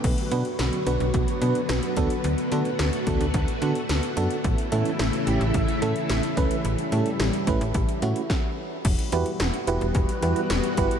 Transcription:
0.04 B1 D3 F#3 B3 F#4, kick, closed hi-hat, crash
0.18 closed hi-hat
0.31 B2 B3 D4 F#4 B4, closed hi-hat
0.45 closed hi-hat
0.59 B1, snare, closed hi-hat
0.73 closed hi-hat
0.87 B1 B3 D4 F#4 B4, closed hi-hat
1.00 B1, closed hi-hat
1.14 B1, kick, closed hi-hat
1.28 closed hi-hat
1.42 B2 B3 D4 F#4 B4, closed hi-hat
1.55 closed hi-hat
1.69 B1, snare, closed hi-hat
1.83 closed hi-hat
1.97 D2 B3 D4 F#4 A4, kick, closed hi-hat
2.10 closed hi-hat
2.24 D2 A3 F#4, closed hi-hat
2.38 closed hi-hat
2.52 D3 B3 D4 F#4 A4, closed hi-hat
2.65 closed hi-hat
2.79 D2, snare, closed hi-hat
2.93 closed hi-hat
3.07 D2 B3 D4 F#4 A4, kick, closed hi-hat
3.21 D2, closed hi-hat
3.34 D2, kick, closed hi-hat
3.48 closed hi-hat
3.62 D3 B3 D4 F#4 A4, closed hi-hat
3.75 closed hi-hat
3.89 D2, snare, closed hi-hat
4.03 closed hi-hat
4.17 F#2 B3 D4 F#4 A4, closed hi-hat
4.30 closed hi-hat
4.44 A1 C#3 E3 A3 E4, kick, closed hi-hat
4.58 closed hi-hat
4.72 A2 A3 C#4 E4 A4, closed hi-hat
4.85 closed hi-hat
4.99 A1, snare, closed hi-hat
5.13 closed hi-hat
5.27 A1 A3 C#4 E4 G4, closed hi-hat
5.41 A1, closed hi-hat
5.54 A1, kick, closed hi-hat
5.68 closed hi-hat
5.82 A2 A3 C#4 E4 A4, closed hi-hat
5.96 closed hi-hat
6.09 A1, snare, closed hi-hat
6.23 closed hi-hat
6.37 C#2 A3 C#4 E4 B4, kick, closed hi-hat
6.51 closed hi-hat
6.65 A1 G3, closed hi-hat
6.79 closed hi-hat
6.92 A2 A3 C#4 E4 A4, closed hi-hat
7.06 closed hi-hat
7.20 A1, snare, closed hi-hat
7.33 closed hi-hat
7.47 A1 A3 C#4 E4 B4, kick, closed hi-hat
7.61 A1, closed hi-hat
7.74 A1, kick, closed hi-hat
7.89 closed hi-hat
8.02 A2 A3 C#4 E4 F#4, closed hi-hat
8.16 closed hi-hat
8.30 kick, snare
8.85 E1 E3 G3 B3 F#4, kick, closed hi-hat, crash
8.99 closed hi-hat
9.12 E2 E4 F#4 G4 B4, closed hi-hat
9.26 closed hi-hat
9.40 E1, snare, closed hi-hat
9.54 closed hi-hat
9.67 E1 E4 F#4 G4 B4, closed hi-hat
9.81 E1, closed hi-hat
9.95 E1, kick, closed hi-hat
10.09 closed hi-hat
10.22 E2 E4 F#4 G4 B4, closed hi-hat
10.36 closed hi-hat
10.50 E1, snare, closed hi-hat
10.64 closed hi-hat
10.77 G1 E4 F#4 G4 B4, kick, closed hi-hat
10.91 closed hi-hat

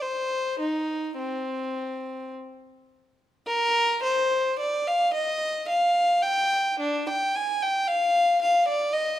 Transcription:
0.02 C5
0.60 D#4
1.18 C4
3.47 A#4
4.03 C5
4.59 D5
4.87 F5
5.14 D#5
5.69 F5
6.22 G5
6.79 D4
7.09 G5
7.35 G#5
7.62 G5
7.88 F5
8.42 F5
8.68 D5
8.93 D#5

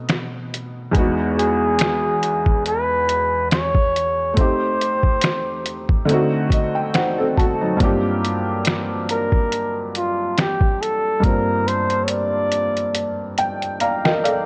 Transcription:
Already playing: B2 A3 C4 D#4 F#4
0.09 finger snap, snare, closed hi-hat
0.54 closed hi-hat
0.92 E2 G#3 B3, kick, closed hi-hat
0.97 D#4 F#4
1.38 G#4, closed hi-hat
1.79 finger snap, snare, closed hi-hat
2.23 closed hi-hat
2.46 kick
2.66 B4, closed hi-hat
3.09 closed hi-hat
3.51 C#5, finger snap, snare, closed hi-hat
3.75 kick
3.96 closed hi-hat
4.34 A3 C4 C5, kick, closed hi-hat
4.38 D#4 G4
4.81 closed hi-hat
5.03 kick
5.21 finger snap, snare, closed hi-hat
5.66 closed hi-hat
5.89 kick
6.05 D3 A3 C4, closed hi-hat
6.10 D#4 F#4
6.50 D#5, kick, closed hi-hat
6.75 G5
6.94 D#4 C5 F#5, finger snap, snare, closed hi-hat
7.18 C4 A4
7.37 A3 F#4 A5, kick, closed hi-hat
7.61 F#3 D#4
7.77 G2 A#3 C4, kick, closed hi-hat
7.81 D4 F4 G4
8.24 closed hi-hat
8.65 finger snap, snare, closed hi-hat
9.09 A#4, closed hi-hat
9.32 kick
9.52 closed hi-hat
9.95 F4, closed hi-hat
10.38 G4, finger snap, snare, closed hi-hat
10.61 kick
10.82 A4, closed hi-hat
11.20 G2 A#3 C4, kick, closed hi-hat
11.24 D4 F4 A#4 C5
11.68 C5, closed hi-hat
11.90 closed hi-hat
12.04 C#5, closed hi-hat
12.10 D5
12.52 closed hi-hat
12.77 closed hi-hat
12.95 closed hi-hat
13.38 G5, closed hi-hat
13.62 closed hi-hat
13.80 D5 F5 A#5, closed hi-hat
14.05 A#4 D#5 G5, snare
14.24 A4 D5 F5, closed hi-hat

